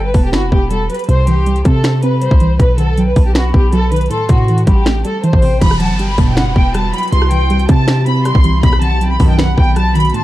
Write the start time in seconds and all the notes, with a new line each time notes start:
Already playing: G1 E3 F#3 G3 G5
0.05 B4
0.14 E1 B3 A5, kick, open hi-hat
0.24 G4
0.32 G1 E4 F#4 B5, finger snap, snare, closed hi-hat
0.43 E1
0.52 E1 B3 G4, kick
0.70 G3 A4, closed hi-hat
0.90 F#3 B4, closed hi-hat
0.94 closed hi-hat
0.99 closed hi-hat
1.04 closed hi-hat
1.09 C2 C3 C5 C6, closed hi-hat
1.27 E3 G4, closed hi-hat
1.46 G3, closed hi-hat
1.56 closed hi-hat
1.65 C3 C4 A4 A5, kick, closed hi-hat
1.84 C5, finger snap, snare, closed hi-hat
2.03 C4 B4 B5, closed hi-hat
2.21 G3 C5, closed hi-hat
2.31 C2, kick
2.40 E3, closed hi-hat
2.59 B1 B2 B4, kick, closed hi-hat
2.78 D#3 A4 F#5, closed hi-hat
2.97 F#3 G5, closed hi-hat
3.07 B4
3.16 B1 B3 A5, kick, open hi-hat
3.26 G4
3.35 F#4 B4 B5, finger snap, snare, closed hi-hat
3.54 B1 B3 G4, kick
3.72 F#3 A4, closed hi-hat
3.92 D#3 B4, closed hi-hat
3.96 closed hi-hat
4.01 closed hi-hat
4.06 closed hi-hat
4.10 A2 A4 C6, closed hi-hat
4.29 A2 C3 F#4, kick, closed hi-hat
4.48 E3, closed hi-hat
4.58 closed hi-hat
4.67 A1 G3 G4 B5, kick, closed hi-hat
4.86 A3, finger snap, snare, closed hi-hat
5.05 G3 A4, closed hi-hat
5.23 E3 C5 A5, closed hi-hat
5.33 A1, kick
5.42 C3 G5, open hi-hat
5.61 E1 B1 G2 B2 E3 B5, kick, closed hi-hat, crash, downlifter
5.71 cross-stick
5.80 F#3 F#5 A5, closed hi-hat
5.90 G1
5.99 G3 G5, closed hi-hat
6.09 B5
6.18 E1 B1 G2 B2 B3 A5, kick, open hi-hat
6.27 G5
6.36 G1 E4 F#5 B5, finger snap, snare, closed hi-hat
6.46 E1
6.55 E1 B3 G5, kick
6.74 G3 A5, cross-stick, closed hi-hat
6.93 F#3 B5, closed hi-hat
6.98 closed hi-hat
7.03 closed hi-hat
7.08 closed hi-hat
7.12 C2 C3 C6, closed hi-hat
7.22 cross-stick
7.31 E3 G5, closed hi-hat
7.50 G3, closed hi-hat
7.59 closed hi-hat
7.69 C3 C4 A5, kick, closed hi-hat
7.88 C5, finger snap, snare, closed hi-hat
8.06 C4 B5, closed hi-hat
8.25 G3 C6, cross-stick, closed hi-hat
8.35 C2, kick
8.44 E3, closed hi-hat
8.63 B1 D#2 F#2 B2 B5, kick, closed hi-hat
8.73 cross-stick
8.81 D#3 F#5 A5, closed hi-hat
9.01 F#3 G5, closed hi-hat
9.10 B5
9.20 B1 F#2 B2 D#3 B3 A5, kick, open hi-hat
9.30 G5
9.38 B4 F#5 B5, finger snap, snare, closed hi-hat
9.58 B1 B3 G5, kick
9.76 F#3 A5, cross-stick, closed hi-hat
9.95 D#3 B5, closed hi-hat
10.00 closed hi-hat
10.05 closed hi-hat
10.10 closed hi-hat
10.14 A2 A5 C6, closed hi-hat